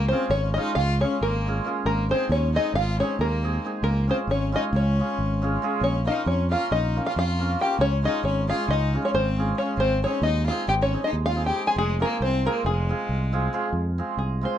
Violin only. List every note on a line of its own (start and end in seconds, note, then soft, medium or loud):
0.11 0.30 C4 medium
0.32 0.54 C#4 medium
0.56 0.75 D#4 medium
0.78 1.00 F4 medium
1.03 1.21 C#4 medium
1.22 1.67 A#3 medium
1.88 2.09 A#3 medium
2.11 2.30 C4 medium
2.33 2.54 C#4 medium
2.54 2.74 D#4 medium
2.78 2.99 F4 medium
2.99 3.19 C#4 medium
3.21 3.66 A#3 medium
3.83 4.06 A#3 medium
4.10 4.19 C4 medium
4.30 4.52 C#4 medium
4.55 4.64 D#4 medium
4.75 5.58 C#4 medium
5.81 6.04 C#4 medium
6.07 6.26 D#4 medium
6.28 6.50 C#4 medium
6.51 6.71 F4 medium
6.73 7.05 D#4 medium
7.08 7.17 F4 medium
7.18 7.57 F4 medium
7.62 7.79 G4 medium
7.80 8.02 C#4 medium
8.04 8.24 D#4 medium
8.25 8.48 C#4 medium
8.49 8.69 F4 medium
8.70 9.02 D#4 medium
9.05 9.15 C#4 medium
9.16 9.55 C4 medium
9.57 9.76 C#4 medium
9.79 10.01 C4 medium
10.05 10.23 C#4 medium
10.24 10.46 D#4 medium
10.46 10.66 F4 medium
10.69 10.74 G4 medium
10.82 11.02 C#4 medium
11.06 11.15 D#4 medium
11.29 11.45 F4 medium
11.46 11.65 G4 medium
11.68 11.76 G#4 medium
11.78 12.00 G#3 medium
12.02 12.20 A#3 medium
12.24 12.45 C4 medium
12.50 12.67 A#3 medium
12.70 13.51 G#3 medium